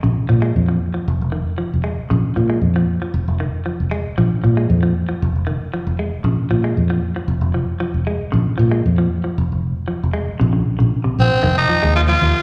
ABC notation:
X:1
M:4/4
L:1/16
Q:1/4=116
K:Bbm
V:1 name="Tenor saxophone"
z16 | z16 | z16 | z16 |
z16 | z6 C3 E3 F F3 |]
V:2 name="Clean electric guitar" clef=bass
D,2 F, A,2 F,2 F,2 z E,2 F,2 A,2 | D,2 F, A,2 F,2 F,2 z E,2 F,2 A,2 | F,2 F, A,2 F,2 F,2 z E,2 F,2 A,2 | D,2 F, A,2 F,2 F,2 z F,2 F,2 A,2 |
D,2 F, A,2 F,2 F,2 z3 F,2 A,2 | C, D,2 D,2 C,2 z E,2 F, A,2 F,2 z |]
V:3 name="Fingered electric bass" clef=bass
B,,, z B,,2 F,,2 z2 F,,, F,,,2 z2 F,,, z2 | B,,, z B,,2 F,,2 z2 F,,, F,,,2 z2 F,,, z2 | B,,, z B,,2 F,,2 z2 F,,, F,,,2 z2 F,,, z2 | B,,, z B,,2 F,,2 z2 F,,, F,,,2 z2 F,,, z2 |
B,,, z B,,2 F,,2 z2 F,,, F,,,2 z2 F,,, z2 | B,,,2 z B,,, z2 B,,, z F,,,2 z E,,3 E,, z |]